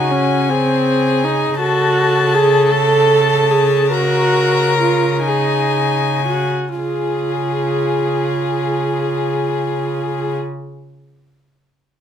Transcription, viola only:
Already playing: D#4
0.12 C#4
0.49 C4
1.24 D#4
1.61 F#4
2.34 G#4
2.71 A4
3.51 G#4
3.93 F#4
4.80 F4
5.25 D#4
6.27 F#4
6.79 F4

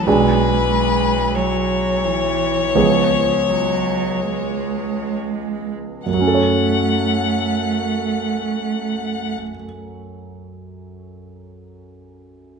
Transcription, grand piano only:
0.07 B1 G#3 D4 G#4
2.75 C#2 F3 B3 G#4
6.06 F#2
6.14 F#3
6.20 C#4
6.27 A4
6.35 C#5

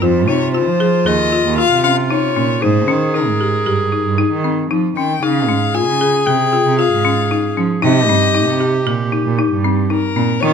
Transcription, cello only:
0.02 F2
0.28 C3
0.67 F3
1.06 D#2
1.45 D#2
1.71 C3
2.36 A#2
2.63 G#2
2.88 D#3
3.28 G#2
3.66 G2
4.06 G2
4.31 D#3
4.70 F3
4.97 D#3
5.22 C#3
5.49 G#2
5.88 C#3
6.26 C3
6.66 C3
6.92 G#2
7.57 F3
7.83 C3
8.09 G2
8.47 C3
8.86 A#2
9.25 A#2
9.51 G2
10.16 A#2
10.42 D#3

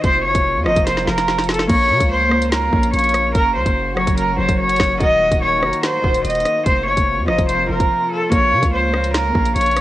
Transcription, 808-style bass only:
0.04 F1
0.25 F#1
0.35 F1
0.56 F2
0.66 F1
0.76 F1
1.07 F1
1.69 A#1
1.90 C#3
2.00 C#2
2.73 A#1
2.94 A#1
3.35 F#1
3.56 C#2
3.66 F#1
4.07 F#1
4.38 F#1
4.49 F#1
4.80 F#1
5.01 D#1
5.32 D#1
5.63 F1
6.04 D#1
6.25 D#1
6.66 F1
6.87 F#1
6.97 F1
7.18 F2
7.28 F1
7.38 F1
7.70 F1
7.80 F1
8.32 A#1
8.52 C#3
8.63 C#2
9.35 A#1
9.56 A#1

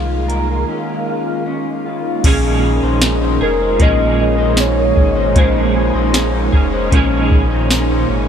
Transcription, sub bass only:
Already playing: C2
2.24 A#1
2.83 A#1
3.41 F1
3.80 A#1
4.97 G#1
5.36 A#1
5.94 A#1
6.54 F1
6.92 A#1
8.09 G#1

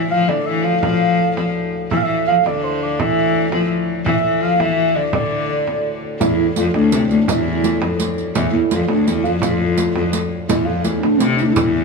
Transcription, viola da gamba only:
0.10 F3
0.28 D3
0.46 E3
0.64 F3
0.82 F3
1.37 F3
1.90 E3
2.04 E3
2.27 F3
2.45 D3
3.00 E3
3.52 F3
4.05 E3
4.23 E3
4.41 F3
4.60 E3
4.95 D3
5.13 D3
6.20 E2
6.57 F2
6.76 D2
6.93 C3
7.09 D2
7.27 E2
7.81 F2
8.36 E2
8.54 E2
8.72 F2
8.90 D2
9.07 E2
9.26 F2
9.44 F2
9.97 F2
10.49 E2
10.67 F2
10.86 E2
11.04 D2
11.20 C3
11.39 D2
11.48 D2
11.58 E2

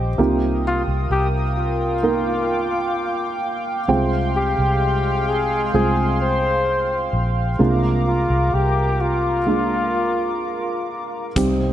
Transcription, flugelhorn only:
0.67 F4
1.12 G4
1.58 F4
4.36 G4
5.29 G#4
5.75 G#4
6.22 C5
8.08 F4
8.54 G4
9.02 F4

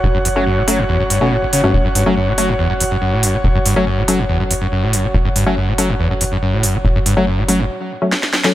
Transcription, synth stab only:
0.36 F#3 A3 C#4
0.68 F#3 A3 C#4
1.21 F#3 A3 C#4
1.64 F#3 A3 C#4
2.06 F#3 A3 C#4
2.38 F#3 A3 C#4
3.76 F#3 A3 C#4
4.08 F#3 A3 C#4
5.46 F#3 A3 C#4
5.78 F#3 A3 C#4
7.17 F#3 A3 C#4
7.48 F#3 A3 C#4
8.02 F#3 A3 C#4
8.44 F#3 A3 C#4

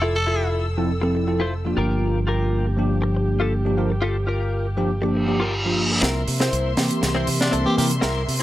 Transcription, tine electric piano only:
0.77 F3 C4 E4 A4
1.02 F3 C4 E4 A4
1.27 F3 C4 E4 A4
1.65 F3 A#3 D4 F4
2.77 F3 A#3 D4 G4
3.65 F3 A#3 D4 G4
3.77 F3 A#3 D4 A#4
4.77 F3 A#3 D4 G4
5.02 F3 A#3 D4 G4
5.27 F3 A#3 D4 G4
5.65 F3 A#3 D4 F4
6.77 E3 A#3 C4 G4
7.65 E3 A#3 C4 G4
7.77 E3 A#3 C4 A#4

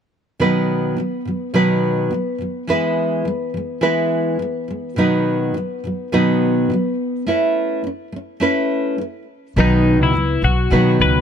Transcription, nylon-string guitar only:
0.40 B2 D#3 F#3 B3 D#4 B4
0.97 B2 D#3 F#3
1.25 B2 D#3 F#3
1.54 B2 D#3 F#3 B3 D#4 B4
2.11 B2 D#3 F#3
2.38 B2 D#3 F#3
2.67 E3 G#3 B3 E4 B4
3.25 E3 G#3
3.54 E3 G#3
3.81 E3 G#3 B3 E4 B4
4.39 E3 G#3
4.68 E3 G#3
4.96 B2 D#3 F#3 B3 D#4 B4
5.54 B2 D#3 F#3
5.84 B2 D#3 F#3
6.12 B2 D#3 F#3 B3 D#4 B4
6.70 B2 D#3 F#3
7.27 A3 C#4 E4 B4
7.84 A3 C#4
8.12 A3 C#4
8.40 A3 C#4 E4 B4
8.98 A3 C#4
9.57 B2 D#3 F#3 B3 D#4 B4
10.13 B2 D#3 F#3
10.42 B2 D#3 F#3
10.70 B2 D#3 F#3 B3 D#4 B4

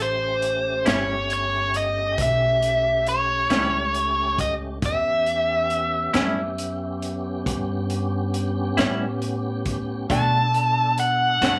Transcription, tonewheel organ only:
Already playing: A3 C#4 G4
4.83 B3 C#4 G4
10.09 D4 A4

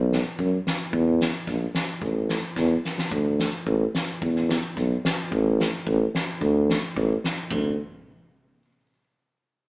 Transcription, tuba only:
Already playing: B1
0.39 F#2
0.93 E2
1.48 A#1
2.02 A1
2.57 E2
3.11 D2
3.66 A1
4.21 E2
4.76 B1
5.32 A1
5.86 A1
6.41 D2
6.96 A1
7.51 D2

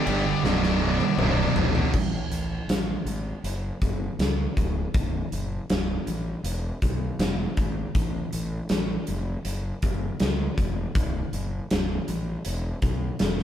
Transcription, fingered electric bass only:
0.06 G1
0.43 B0
1.17 B0
1.56 G#1
1.94 A1
2.30 A1
2.68 A1
3.05 G#1
3.43 F#1
3.81 F#1
4.19 C#2
4.57 C#1
4.94 B0
5.32 F#1
5.70 B0
6.07 A1
6.44 E1
6.82 B1
7.19 E1
7.57 G#1
7.95 A1
8.33 A1
8.70 A1
9.08 F1
9.45 F#1
9.83 F#1
10.20 C#2
10.58 E1
10.95 B0
11.32 F#1
11.71 B0
12.08 A1
12.46 E1
12.82 B1
13.20 E1

